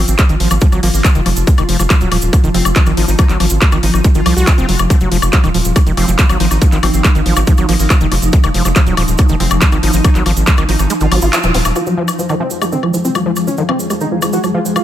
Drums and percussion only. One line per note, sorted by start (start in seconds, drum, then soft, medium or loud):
0.08 closed hi-hat soft
0.08 cabasa medium
0.18 kick loud
0.18 clap loud
0.18 closed hi-hat loud
0.18 cabasa medium
0.18 high woodblock soft
0.29 closed hi-hat soft
0.29 cabasa soft
0.40 open hi-hat loud
0.51 closed hi-hat soft
0.51 cabasa medium
0.51 high woodblock medium
0.61 kick loud
0.61 closed hi-hat medium
0.61 cabasa medium
0.72 closed hi-hat soft
0.72 cabasa soft
0.72 high woodblock soft
0.83 open hi-hat loud
0.94 open hi-hat medium
0.94 cabasa medium
1.04 kick loud
1.04 clap loud
1.04 closed hi-hat loud
1.04 cabasa medium
1.04 high woodblock medium
1.15 closed hi-hat soft
1.15 cabasa soft
1.26 open hi-hat loud
1.26 high woodblock soft
1.36 closed hi-hat soft
1.36 cabasa medium
1.47 kick loud
1.47 closed hi-hat medium
1.47 cabasa medium
1.58 closed hi-hat soft
1.58 cabasa soft
1.58 high woodblock medium
1.69 open hi-hat loud
1.79 closed hi-hat soft
1.79 cabasa medium
1.79 high woodblock soft
1.90 kick loud
1.90 clap loud
1.90 closed hi-hat medium
1.90 cabasa medium
2.01 closed hi-hat soft
2.01 cabasa soft
2.12 open hi-hat loud
2.12 high woodblock medium
2.22 closed hi-hat soft
2.22 cabasa medium
2.33 kick loud
2.33 closed hi-hat medium
2.33 cabasa medium
2.33 high woodblock soft
2.44 closed hi-hat soft
2.44 cabasa soft
2.54 open hi-hat loud
2.65 closed hi-hat soft
2.65 cabasa medium
2.65 high woodblock medium
2.75 kick loud
2.75 clap loud
2.75 closed hi-hat medium
2.75 cabasa medium
2.86 closed hi-hat soft
2.86 cabasa soft
2.86 high woodblock soft
2.97 open hi-hat loud
3.08 cabasa medium
3.18 kick loud
3.18 closed hi-hat medium
3.18 cabasa medium
3.18 high woodblock medium
3.29 clap soft
3.29 closed hi-hat soft
3.29 cabasa soft
3.40 open hi-hat loud
3.40 high woodblock soft
3.50 closed hi-hat soft
3.50 cabasa medium
3.61 kick loud
3.61 clap loud
3.61 closed hi-hat medium
3.61 cabasa medium
3.72 closed hi-hat soft
3.72 cabasa soft
3.72 high woodblock medium
3.83 open hi-hat loud
3.94 closed hi-hat soft
3.94 cabasa medium
3.94 high woodblock soft
4.04 kick loud
4.04 closed hi-hat medium
4.04 cabasa medium
4.15 closed hi-hat soft
4.15 cabasa soft
4.26 open hi-hat loud
4.26 high woodblock medium
4.37 open hi-hat medium
4.37 cabasa medium
4.47 kick loud
4.47 clap loud
4.47 closed hi-hat medium
4.47 cabasa medium
4.47 high woodblock soft
4.58 closed hi-hat soft
4.58 cabasa soft
4.69 open hi-hat loud
4.79 closed hi-hat soft
4.79 cabasa medium
4.79 high woodblock medium
4.90 kick loud
4.90 closed hi-hat medium
4.90 cabasa medium
4.90 high woodblock soft
5.01 closed hi-hat soft
5.01 cabasa soft
5.12 open hi-hat loud
5.22 closed hi-hat soft
5.22 cabasa medium
5.22 high woodblock medium
5.33 kick loud
5.33 clap loud
5.33 closed hi-hat medium
5.33 cabasa medium
5.44 closed hi-hat soft
5.44 cabasa soft
5.44 high woodblock soft
5.54 open hi-hat loud
5.65 closed hi-hat soft
5.65 cabasa medium
5.76 kick loud
5.76 closed hi-hat medium
5.76 cabasa medium
5.76 high woodblock medium
5.87 closed hi-hat soft
5.87 cabasa soft
5.97 open hi-hat loud
5.97 high woodblock soft
6.08 closed hi-hat soft
6.08 cabasa medium
6.19 kick loud
6.19 clap loud
6.19 closed hi-hat medium
6.19 cabasa medium
6.29 closed hi-hat soft
6.29 cabasa soft
6.29 high woodblock medium
6.40 open hi-hat loud
6.51 cabasa medium
6.51 high woodblock soft
6.62 kick loud
6.62 closed hi-hat medium
6.62 cabasa medium
6.72 clap soft
6.72 closed hi-hat soft
6.72 cabasa soft
6.83 open hi-hat loud
6.83 high woodblock medium
6.94 closed hi-hat soft
6.94 cabasa medium
7.04 kick loud
7.04 clap loud
7.04 closed hi-hat medium
7.04 cabasa medium
7.04 high woodblock soft
7.15 closed hi-hat soft
7.15 cabasa soft
7.26 open hi-hat loud
7.36 closed hi-hat soft
7.36 cabasa medium
7.36 high woodblock medium
7.47 kick loud
7.47 closed hi-hat medium
7.47 cabasa medium
7.58 closed hi-hat soft
7.58 cabasa soft
7.58 high woodblock soft
7.69 open hi-hat loud
7.79 open hi-hat medium
7.79 cabasa medium
7.90 kick loud
7.90 clap loud
7.90 closed hi-hat medium
7.90 cabasa medium
7.90 high woodblock medium
8.01 closed hi-hat soft
8.01 cabasa soft
8.12 open hi-hat loud
8.12 high woodblock soft
8.22 closed hi-hat soft
8.22 cabasa medium
8.33 kick loud
8.33 closed hi-hat medium
8.33 cabasa medium
8.44 closed hi-hat soft
8.44 cabasa soft
8.44 high woodblock medium
8.54 open hi-hat loud
8.65 closed hi-hat soft
8.65 cabasa medium
8.65 high woodblock soft
8.76 kick loud
8.76 clap loud
8.76 closed hi-hat loud
8.76 cabasa medium
8.87 closed hi-hat soft
8.87 cabasa soft
8.97 open hi-hat loud
8.97 high woodblock medium
9.08 closed hi-hat soft
9.08 cabasa medium
9.18 kick loud
9.18 closed hi-hat loud
9.18 cabasa medium
9.18 high woodblock soft
9.29 closed hi-hat soft
9.29 cabasa soft
9.40 open hi-hat loud
9.51 closed hi-hat soft
9.51 cabasa medium
9.51 high woodblock medium
9.61 kick loud
9.61 clap loud
9.61 closed hi-hat loud
9.61 cabasa medium
9.72 closed hi-hat soft
9.72 cabasa soft
9.72 high woodblock soft
9.83 open hi-hat loud
9.93 cabasa medium
10.04 kick loud
10.04 closed hi-hat loud
10.04 cabasa medium
10.04 high woodblock medium
10.15 clap soft
10.15 closed hi-hat soft
10.15 cabasa soft
10.26 open hi-hat loud
10.26 high woodblock soft
10.37 closed hi-hat soft
10.37 cabasa medium
10.47 kick loud
10.47 clap loud
10.47 closed hi-hat loud
10.47 cabasa medium
10.57 closed hi-hat soft
10.57 cabasa soft
10.57 high woodblock medium
10.69 open hi-hat loud
10.79 closed hi-hat soft
10.79 cabasa medium
10.79 high woodblock soft
10.90 closed hi-hat loud
10.90 cabasa medium
11.00 closed hi-hat soft
11.00 cabasa soft
11.12 open hi-hat loud
11.12 high woodblock medium
11.22 open hi-hat medium
11.22 cabasa medium
11.33 clap loud
11.33 closed hi-hat loud
11.33 cabasa medium
11.33 high woodblock soft
11.43 closed hi-hat soft
11.43 cabasa soft
11.54 open hi-hat loud
11.65 cabasa medium
11.65 high woodblock medium
11.76 cabasa medium
11.76 high woodblock soft
11.86 cabasa soft
12.08 cabasa medium
12.08 high woodblock medium
12.19 cabasa medium
12.29 cabasa soft
12.29 high woodblock soft
12.50 cabasa medium
12.62 cabasa medium
12.62 high woodblock medium
12.72 cabasa soft
12.83 high woodblock soft
12.94 cabasa medium
13.05 cabasa medium
13.15 cabasa soft
13.15 high woodblock medium
13.36 cabasa medium
13.36 high woodblock soft
13.47 cabasa medium
13.57 cabasa soft
13.69 high woodblock medium
13.80 cabasa medium
13.90 cabasa medium
13.90 high woodblock soft
14.01 cabasa soft
14.22 cabasa medium
14.22 high woodblock medium
14.33 cabasa medium
14.44 cabasa soft
14.44 high woodblock soft
14.66 cabasa medium
14.76 cabasa medium
14.76 high woodblock medium